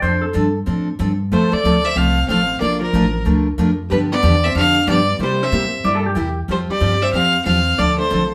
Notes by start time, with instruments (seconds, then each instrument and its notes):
0.02 upright bass F2, steel-string acoustic guitar F3 C4 D4 A4, electric slide guitar C5
0.22 electric slide guitar A4
0.33 upright bass G2, steel-string acoustic guitar F3 C4 D4 A4
0.66 upright bass A2, steel-string acoustic guitar F3 C4 D4 A4
0.99 upright bass G2, steel-string acoustic guitar F3 C4 D4 A4
1.32 upright bass F2, steel-string acoustic guitar F3 A3 C4 F4 A4, hollow-body jazz guitar A3, fiddle C5
1.52 hollow-body jazz guitar A3, fiddle D5, muted upright bass stroke
1.64 upright bass D2, steel-string acoustic guitar F3 A3 C4 F4 A4
1.84 hollow-body jazz guitar C4, fiddle E5
1.96 upright bass C2, steel-string acoustic guitar F3 A3 C4 F4 A4, hollow-body jazz guitar C4, fiddle F5
2.28 upright bass A1, steel-string acoustic guitar F3 A3 C4 F4 A4, hollow-body jazz guitar C4, fiddle F5
2.60 upright bass A#1, steel-string acoustic guitar F3 A3 D4 F4 A#4, hollow-body jazz guitar A#3, fiddle D5
2.81 hollow-body jazz guitar F3, fiddle A#4
2.93 upright bass A1, steel-string acoustic guitar F3 A3 D4 F4 A#4
3.25 upright bass D2, steel-string acoustic guitar F3 A3 D4 F4 A#4
3.58 upright bass F2, steel-string acoustic guitar F3 A3 D4 F4 A#4
3.90 upright bass G2, steel-string acoustic guitar D3 F3 B3 D4 G4, hollow-body jazz guitar G3, fiddle B4
4.12 hollow-body jazz guitar B3, fiddle D5
4.22 upright bass E2, steel-string acoustic guitar D3 F3 B3 D4 G4
4.44 hollow-body jazz guitar C4, fiddle E5
4.55 upright bass F2, steel-string acoustic guitar D3 F3 B3 D4 G4, hollow-body jazz guitar D4, fiddle F5
4.87 upright bass G2, steel-string acoustic guitar D3 F3 B3 D4 G4, fiddle D5
4.92 hollow-body jazz guitar B3
5.19 upright bass C3, steel-string acoustic guitar C3 G3 A#3 E4 G4, fiddle C5
5.23 hollow-body jazz guitar G3
5.43 hollow-body jazz guitar C4, fiddle E5
5.52 upright bass A#2, steel-string acoustic guitar C3 G3 A#3 E4 G4
5.84 upright bass G2, steel-string acoustic guitar C3 G3 A#3 E4 G4, electric slide guitar D5
5.95 electric slide guitar A4
6.06 electric slide guitar G4
6.15 upright bass E2, steel-string acoustic guitar C3 G3 A#3 E4 G4, electric slide guitar G4
6.48 upright bass F2, steel-string acoustic guitar F3 C4 F4 G4, hollow-body jazz guitar G3, fiddle C5
6.69 hollow-body jazz guitar G3, fiddle D5, muted upright bass stroke
6.80 upright bass G2, steel-string acoustic guitar F3 C4 F4 G4
7.02 hollow-body jazz guitar C4, fiddle E5
7.13 upright bass F2, steel-string acoustic guitar F3 C4 F4 G4, hollow-body jazz guitar C4, fiddle F5
7.45 upright bass E2, steel-string acoustic guitar F3 C4 F4 G4, hollow-body jazz guitar C4, fiddle F5
7.78 upright bass D2, steel-string acoustic guitar D3 F3 C4 D4 A4, hollow-body jazz guitar A3, fiddle D5
7.99 hollow-body jazz guitar A3, fiddle C5
8.10 upright bass A#1, steel-string acoustic guitar D3 F3 C4 D4 A4